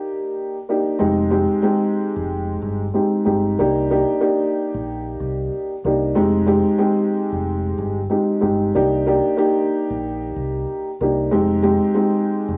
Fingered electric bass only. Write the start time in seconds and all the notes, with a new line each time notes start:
1.01 F1
2.16 F1
2.62 G1
3.27 G1
3.59 C2
4.74 A#1
5.20 C2
5.85 C2
6.17 F1
7.32 F1
7.78 G1
8.43 G1
8.75 C2
9.90 A#1
10.36 C2
11.01 C2
11.33 F1
12.48 F1